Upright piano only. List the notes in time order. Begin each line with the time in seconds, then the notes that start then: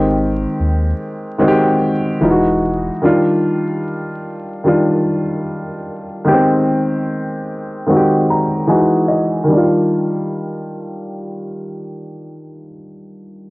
Already playing: D#3 G#3 C4 G4
1.38 D#3 G#3 C4 F#4
1.48 G4
2.21 E3 G#3 D#4 F4
2.31 F#4
3.02 D#3 G3 D4 F4
4.64 D#3 G3 D4 F4
6.24 D#3 G#3 B3 G4
6.33 C4
7.86 D#3 G#3 C4 F#4
7.96 G4
8.30 A#5
8.67 E3 G#3 D#4 F#4 G#5
9.08 D#5
9.44 D#3
9.48 G3
9.53 D4
9.57 F4